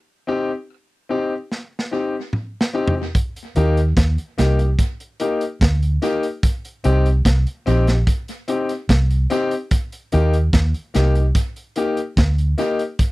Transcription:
0.27 0.49 C4 medium
0.27 0.50 D#4 medium
0.27 0.50 G4 loud
1.09 1.32 C4 medium
1.09 1.32 D#4 medium
1.09 1.32 G4 medium
1.52 snare medium
1.79 snare medium
1.91 2.14 C4 medium
1.91 2.14 D#4 medium
1.91 2.14 G4 medium
2.33 mid tom medium
2.61 snare loud
2.73 2.96 C4 medium
2.73 2.94 D#4 medium
2.73 2.94 G4 loud
2.88 floor tom medium
2.95 3.03 D#4 soft
2.95 3.03 G4 soft
3.15 kick loud
3.15 closed hi-hat medium
3.36 closed hi-hat medium
3.56 3.92 D#2 loud
3.56 3.78 A#3 loud
3.56 3.78 D#4 medium
3.56 3.78 G4 loud
3.56 closed hi-hat medium
3.77 closed hi-hat medium
3.97 4.16 D#2 medium
3.97 kick loud
3.97 snare loud
3.97 closed hi-hat medium
4.18 closed hi-hat soft
4.38 4.75 C2 medium
4.38 4.60 A#3 medium
4.38 4.58 D#4 medium
4.38 4.58 G4 medium
4.38 snare medium
4.38 closed hi-hat medium
4.59 4.68 D#4 soft
4.59 4.68 G4 soft
4.59 closed hi-hat soft
4.79 kick loud
4.79 closed hi-hat medium
5.00 closed hi-hat medium
5.20 5.42 A#3 medium
5.20 5.42 D#4 medium
5.20 5.42 G4 medium
5.20 closed hi-hat medium
5.41 closed hi-hat medium
5.61 5.97 D2 loud
5.61 kick loud
5.61 snare loud
5.61 closed hi-hat medium
5.82 closed hi-hat soft
6.02 6.24 A#3 loud
6.02 6.24 D#4 medium
6.02 6.24 G4 loud
6.02 closed hi-hat medium
6.23 closed hi-hat medium
6.43 kick loud
6.43 closed hi-hat medium
6.65 closed hi-hat soft
6.84 7.21 C2 loud
6.84 7.06 C4 medium
6.84 7.06 D#4 medium
6.84 7.07 G4 loud
6.84 closed hi-hat medium
7.06 closed hi-hat medium
7.25 7.44 C2 medium
7.25 kick medium
7.25 snare loud
7.25 closed hi-hat medium
7.47 closed hi-hat soft
7.66 8.03 A#1 medium
7.66 7.88 C4 medium
7.66 7.86 D#4 medium
7.66 7.86 G4 loud
7.66 closed hi-hat medium
7.87 7.96 D#4 soft
7.87 7.96 G4 soft
7.87 snare medium
7.87 closed hi-hat soft
8.07 kick loud
8.07 closed hi-hat medium
8.28 closed hi-hat medium
8.48 8.70 C4 medium
8.48 8.70 D#4 medium
8.48 8.70 G4 medium
8.48 closed hi-hat medium
8.69 closed hi-hat medium
8.89 9.25 C2 medium
8.89 kick loud
8.89 snare loud
8.89 closed hi-hat medium
9.10 closed hi-hat medium
9.30 9.52 C4 loud
9.30 9.52 D#4 medium
9.30 9.53 G4 loud
9.30 closed hi-hat medium
9.51 closed hi-hat medium
9.71 kick loud
9.71 closed hi-hat medium
9.92 closed hi-hat medium
10.12 10.49 D#2 loud
10.12 10.34 A#3 loud
10.12 10.34 D#4 medium
10.12 10.35 G4 loud
10.12 closed hi-hat medium
10.33 closed hi-hat medium
10.53 10.72 D#2 medium
10.53 kick loud
10.53 snare loud
10.53 closed hi-hat medium
10.74 closed hi-hat soft
10.94 11.31 C2 medium
10.94 11.16 A#3 medium
10.94 11.14 D#4 medium
10.94 11.14 G4 medium
10.94 snare medium
10.94 closed hi-hat medium
11.15 11.24 D#4 soft
11.15 11.24 G4 soft
11.15 closed hi-hat soft
11.35 kick loud
11.35 closed hi-hat medium
11.56 closed hi-hat soft
11.76 11.98 A#3 medium
11.76 11.98 D#4 medium
11.76 11.99 G4 medium
11.76 closed hi-hat medium
11.97 closed hi-hat medium
12.17 12.53 D2 loud
12.17 kick loud
12.17 snare loud
12.17 closed hi-hat medium
12.38 closed hi-hat medium
12.58 12.80 A#3 loud
12.58 12.80 D#4 medium
12.58 12.80 G4 loud
12.58 closed hi-hat medium
12.79 closed hi-hat medium
12.99 kick loud
12.99 closed hi-hat medium

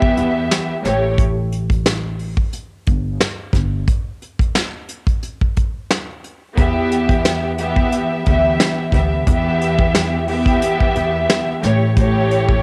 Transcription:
0.00 0.74 E3 loud
0.00 0.74 B3 loud
0.00 0.75 G4 loud
0.00 0.75 E5 loud
0.00 kick medium
0.17 0.47 E2 medium
0.17 closed hi-hat medium
0.51 snare loud
0.51 closed hi-hat medium
0.82 2.34 A1 loud
0.82 1.14 A2 loud
0.82 1.15 A3 medium
0.82 1.15 G4 medium
0.82 1.16 C#5 medium
0.82 snare soft
0.82 closed hi-hat medium
1.18 kick loud
1.18 closed hi-hat loud
1.52 closed hi-hat medium
1.70 kick loud
1.70 closed hi-hat medium
1.86 snare loud
1.86 snare medium
1.86 closed hi-hat loud
2.19 open hi-hat medium
2.37 kick medium
2.53 closed hi-hat medium
2.87 3.17 G1 medium
2.87 kick medium
2.87 closed hi-hat medium
3.21 snare loud
3.21 closed hi-hat medium
3.53 3.83 G1 medium
3.53 kick medium
3.53 snare soft
3.53 closed hi-hat medium
3.88 kick loud
3.88 closed hi-hat loud
4.22 closed hi-hat medium
4.39 kick loud
4.39 closed hi-hat medium
4.55 snare loud
4.55 snare medium
4.55 closed hi-hat loud
4.89 closed hi-hat medium
5.07 kick loud
5.07 closed hi-hat medium
5.23 closed hi-hat medium
5.41 kick medium
5.57 kick medium
5.57 closed hi-hat medium
5.90 snare loud
5.90 closed hi-hat medium
6.24 closed hi-hat medium
6.55 7.88 E2 loud
6.55 7.50 E3 loud
6.55 7.51 B3 medium
6.55 7.51 G4 loud
6.55 7.52 E5 loud
6.55 kick loud
6.55 closed hi-hat loud
6.91 closed hi-hat medium
7.09 kick loud
7.09 closed hi-hat medium
7.25 snare loud
7.25 snare medium
7.25 closed hi-hat loud
7.57 8.20 E3 loud
7.57 8.21 B3 loud
7.57 8.21 G4 medium
7.57 8.22 E5 loud
7.57 closed hi-hat medium
7.76 kick loud
7.92 closed hi-hat medium
8.25 8.56 D2 medium
8.25 8.88 E3 loud
8.25 8.88 B3 medium
8.25 8.89 G4 medium
8.25 8.89 E5 loud
8.25 kick medium
8.25 closed hi-hat medium
8.60 snare loud
8.60 snare medium
8.60 closed hi-hat medium
8.92 9.23 D2 loud
8.92 9.24 E3 medium
8.92 9.24 B3 medium
8.92 9.25 G4 medium
8.92 9.25 E5 medium
8.92 kick medium
8.92 closed hi-hat medium
9.26 10.58 E2 loud
9.26 10.21 E3 loud
9.26 10.21 B3 loud
9.26 10.22 G4 loud
9.26 10.22 E5 loud
9.26 kick loud
9.26 closed hi-hat loud
9.61 closed hi-hat medium
9.79 kick loud
9.95 snare loud
9.95 snare medium
9.95 closed hi-hat loud
10.26 11.52 E3 loud
10.26 11.53 B3 loud
10.26 11.53 G4 loud
10.26 11.54 E5 loud
10.26 open hi-hat medium
10.46 kick loud
10.46 closed hi-hat medium
10.62 closed hi-hat loud
10.81 kick medium
10.96 11.26 E2 medium
10.96 closed hi-hat medium
11.30 snare loud
11.30 closed hi-hat medium
11.60 12.63 A1 loud
11.60 11.93 A2 medium
11.60 11.93 A3 medium
11.60 11.94 G4 medium
11.60 11.94 C#5 loud
11.60 snare soft
11.60 closed hi-hat medium
11.95 12.63 A2 loud
11.95 12.63 A3 medium
11.95 12.63 G4 loud
11.95 12.63 C#5 loud
11.95 kick loud
11.95 closed hi-hat loud
12.31 closed hi-hat medium
12.49 kick medium

